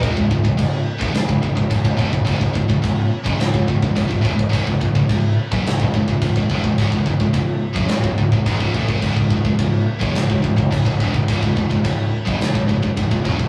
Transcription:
<<
  \new Staff \with { instrumentName = "Distorted electric guitar" } { \clef bass \time 4/4 \key cis \minor \tempo 4 = 107 <cis, gis,>16 <cis, gis,>16 <cis, gis,>16 <cis, gis,>16 <cis, gis,>8 r16 <fis, cis>16 <cis, gis,>16 <cis, gis,>16 <cis, gis,>16 <cis, gis,>16 <cis, gis,>16 <cis, gis,>16 <e, b,>16 <cis, gis,>16 | <cis, gis,>16 <cis, gis,>16 <cis, gis,>16 <cis, gis,>16 <cis, gis,>8 r16 <fis, cis>16 <cis, gis,>16 <cis, gis,>16 <cis, gis,>16 <cis, gis,>16 <cis, gis,>16 <cis, gis,>16 <e, b,>16 <cis, gis,>16 | <cis, gis,>16 <cis, gis,>16 <cis, gis,>16 <cis, gis,>16 <cis, gis,>8 r16 <fis, cis>16 <cis, gis,>16 <cis, gis,>16 <cis, gis,>16 <cis, gis,>16 <cis, gis,>16 <cis, gis,>16 <e, b,>16 <cis, gis,>16 | <cis, gis,>16 <cis, gis,>16 <cis, gis,>16 <cis, gis,>16 <cis, gis,>8 r16 <fis, cis>16 <cis, gis,>16 <cis, gis,>16 <cis, gis,>16 <cis, gis,>16 <b, fis>16 <cis, gis,>16 <a, e>16 <gis, dis>16 |
<cis, gis,>16 <cis, gis,>16 <cis, gis,>16 <cis, gis,>16 <cis, gis,>8 r16 <fis, cis>16 <cis, gis,>16 <cis, gis,>16 <cis, gis,>16 <cis, gis,>16 <cis, gis,>16 <cis, gis,>16 <e, b,>16 <cis, gis,>16 | <cis, gis,>16 <cis, gis,>16 <cis, gis,>16 <cis, gis,>16 <cis, gis,>8 r16 <fis, cis>16 <cis, gis,>16 <cis, gis,>16 <cis, gis,>16 <cis, gis,>16 <cis, gis,>16 <cis, gis,>16 <e, b,>16 <cis, gis,>16 | }
  \new Staff \with { instrumentName = "Picked electric bass" } { \clef bass \time 4/4 \key cis \minor cis,,16 cis,,16 cis,,16 cis,,16 cis,,8 r16 fis,,16 cis,,16 cis,,16 cis,,16 cis,,16 cis,,16 cis,,16 e,,16 cis,,16 | cis,,16 cis,,16 cis,,16 cis,,16 cis,,8 r16 fis,,16 cis,,16 cis,,16 cis,,16 cis,,16 cis,,16 cis,,16 e,,16 cis,,16 | cis,,16 cis,,16 cis,,16 cis,,16 cis,,8 r16 fis,,16 cis,,16 cis,,16 cis,,16 cis,,16 cis,,16 cis,,16 e,,16 cis,,16 | cis,,16 cis,,16 cis,,16 cis,,16 cis,,8 r16 fis,,16 cis,,16 cis,,16 cis,,16 cis,,16 b,,16 cis,,16 a,,16 gis,,16 |
cis,,16 cis,,16 cis,,16 cis,,16 cis,,8 r16 fis,,16 cis,,16 cis,,16 cis,,16 cis,,16 cis,,16 cis,,16 e,,16 cis,,16 | cis,,16 cis,,16 cis,,16 cis,,16 cis,,8 r16 fis,,16 cis,,16 cis,,16 cis,,16 cis,,16 cis,,16 cis,,16 e,,16 cis,,16 | }
  \new DrumStaff \with { instrumentName = "Drums" } \drummode { \time 4/4 <cymc bd>16 bd16 bd16 bd16 <cymc bd>8. bd16 <cymc sn>16 bd16 bd16 bd16 <cymc bd>16 bd16 bd16 bd16 | <cymc bd>16 bd16 bd16 bd16 <cymc bd>8. bd16 <cymc sn>16 bd16 bd16 bd16 <cymc bd>16 bd16 bd16 bd16 | <cymc bd>16 bd16 bd16 bd16 <cymc bd>8. bd16 <cymc sn>16 bd16 bd16 bd16 <cymc bd>16 bd16 bd16 bd16 | <cymc bd>16 bd16 bd16 bd16 <cymc bd>8. bd16 <cymc sn>16 bd16 bd16 bd16 <cymc bd>16 bd16 bd16 bd16 |
<cymc bd>16 bd16 bd16 bd16 <cymc bd>8. bd16 <cymc sn>16 bd16 bd16 bd16 <cymc bd>16 bd16 bd16 bd16 | <cymc bd>16 bd16 bd16 bd16 <cymc bd>8. bd16 <cymc sn>16 bd16 bd16 bd16 <cymc bd>16 bd16 bd16 bd16 | }
>>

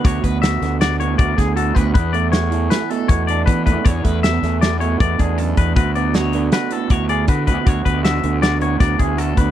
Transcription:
<<
  \new Staff \with { instrumentName = "Clean electric guitar" } { \time 5/4 \key d \lydian \tempo 4 = 158 cis''8 b'8 e''4 d''8 cis''8 d''8 gis'8 a'8 b'8 | b'8 d''8 cis''4 b'8 a'8 cis''8 d''8 b'8 b'8 | cis''8 b'8 e''4 d''8 cis''8 d''8 gis'8 a'8 b'8 | b'8 d''8 cis''4 b'8 a'8 cis''8 d''8 b'8 b'8 |
cis''8 b'8 e''4 d''8 cis''8 d''8 gis'8 a'8 b'8 | }
  \new Staff \with { instrumentName = "Clean electric guitar" } { \time 5/4 \key d \lydian << { fis'8 b8 fis'8 b8 fis'8 b8 fis'8 gis'8 fis'8 b8 | b8 a8 b8 a8 a16 b16 a8 b8 d'8 b8 a8 | b8 a8 a16 b16 a8 a16 b16 a8 b8 d'4. | fis'8 b8 fis'8 b8 fis'8 b8 fis'8 gis'8 fis'8 b8 |
fis'8 b8 fis'8 b8 fis'8 b8 fis'8 gis'8 fis'8 b8 | } \\ { <d, d>4. d4 a,4. d,4 | e,4. e4 b,4. e,4 | e,4. e4 b,4. fis,8 e,8 | d,4. d4 a,4. d,4 |
d,4. d4 a,4. d,4 | } >> }
  \new Staff \with { instrumentName = "Fingered electric bass" } { \clef bass \time 5/4 \key d \lydian d,8 d,4 d,4. d,8 d,4 d,8 | e,2 r4 e,4 e8 e,16 r16 | e,8 e,4 e,4. e,8 e,4 e,8 | d,2 r4 d,4 d8 d,16 r16 |
d,8 d,4 d,4. d,8 d,4 d,8 | }
  \new DrumStaff \with { instrumentName = "Drums" } \drummode { \time 5/4 <hh bd>8 <hh bd>8 <hh sn>8 <hh sn>8 <hh sn>8 hh8 <hh bd>8 <hh bd sn>8 hh8 <hh bd>8 | <hh bd>8 hh8 <hh sn>8 hh8 <hh sn>8 hh8 <hh bd>8 hh8 <hh bd>8 <hh bd>8 | <hh bd>8 <hh bd>8 <hh sn>8 <hh sn>8 <hh sn>8 hh8 <hh bd>8 <hh bd>8 hh8 <hh bd>8 | <hh bd>8 hh8 <hh sn>8 hh8 <hh sn>8 hh8 <hh bd>8 hh8 <hh bd>8 <hh bd>8 |
<hh bd>8 <hh bd>8 <hh sn>8 hh8 <hh sn>8 hh8 <hh bd sn>8 <hh bd>8 hh8 <hh bd>8 | }
>>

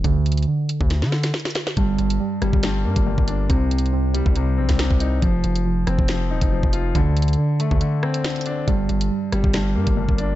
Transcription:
<<
  \new Staff \with { instrumentName = "Grand piano" } { \clef bass \time 4/4 \key g \minor \tempo 4 = 139 r1 | g,4. g8 g,8 bes8 g,8 d'8 | c4. g8 c8 c'8 c8 ees'8 | f4. c'8 f8 ees'8 f8 f'8 |
d4. a8 d8 c'8 d8 d'8 | g,4. g8 g,8 bes8 g,8 d'8 | }
  \new Staff \with { instrumentName = "Synth keys" } { \clef bass \time 4/4 \key g \minor d4 d2. | g4 g2. | c'4 c'2. | f4 f2. |
d4 d2. | g4 g2. | }
  \new Staff \with { instrumentName = "808-style bass" } { \clef bass \time 4/4 \key g \minor d,4 r8. d,8 d8. r4 | g,,8 g,,8 r8 g,,16 g,,8. g,16 g,,8 g,,8. | c,4.~ c,16 c,8. bes,,16 c,8 c,8. | f,,8 f,,4 f,,16 f,,8. ees,,16 f,,8 f,,8. |
d,4 r8. d,16 r2 | g,,8 g,,8 r8 g,,16 g,,8. g,16 g,,8 g,,8. | }
  \new DrumStaff \with { instrumentName = "Drums" } \drummode { \time 4/4 <hh bd>8 hh32 hh32 hh32 hh32 r8 hh16 bd16 <hh sn>16 sn16 sn16 <hh sn>16 <hh sn>32 hh32 <hh sn>32 hh32 <hh sn>16 sn16 | <hh bd>8 hh16 hh16 r8 <hh ss>16 bd16 <hh sn>8. <hh bd>16 r16 bd16 hh8 | \tuplet 3/2 { <hh bd>16 r16 r16 hh16 hh16 hh16 } r8 hh16 bd16 hh8. <hh bd sn>16 <hh sn>16 bd16 hh8 | <hh bd>8 hh16 hh16 r8 <hh ss>16 bd16 <hh sn>8. <hh bd>16 r16 bd16 hh8 |
<hh bd>8 hh32 hh32 hh32 hh32 r8 hh16 bd16 hh8 ss16 hh16 <hh sn>32 hh32 hh32 hh32 hh8 | <hh bd>8 hh16 hh16 r8 <hh ss>16 bd16 <hh sn>8. <hh bd>16 r16 bd16 hh8 | }
>>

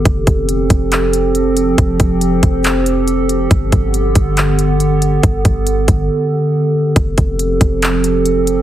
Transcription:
<<
  \new Staff \with { instrumentName = "Ambient pad" } { \time 4/4 \key f \lydian \tempo 4 = 139 << { <g' a'>1~ | <g' a'>1~ | <g' a'>1~ | <g' a'>1 |
<g' a'>1 | } \\ { <f c'>1~ | <f c'>1 | <d b>1~ | <d b>1 |
<f c'>1 | } >> }
  \new Staff \with { instrumentName = "808-style bass" } { \clef bass \time 4/4 \key f \lydian f,,8 f,,4 f,,2~ f,,8 | f,,8 f,,4 f,,2~ f,,8 | g,,8 g,,4 g,,2~ g,,8 | g,,8 g,,4 g,,8 r2 |
f,,8 f,,4 f,,2~ f,,8 | }
  \new DrumStaff \with { instrumentName = "Drums" } \drummode { \time 4/4 <hh bd>8 <hh bd>8 hh8 <hh bd>8 <hc hh>8 hh8 hh8 hh8 | <hh bd>8 <hh bd>8 hh8 <hh bd>8 <hc hh>8 hh8 hh8 hh8 | <hh bd>8 <hh bd>8 hh8 <hh bd>8 <hc hh>8 hh8 hh8 hh8 | <hh bd>8 <hh bd>8 hh8 <hh bd>8 r4 r4 |
<hh bd>8 <hh bd>8 hh8 <hh bd>8 <hc hh>8 hh8 hh8 hh8 | }
>>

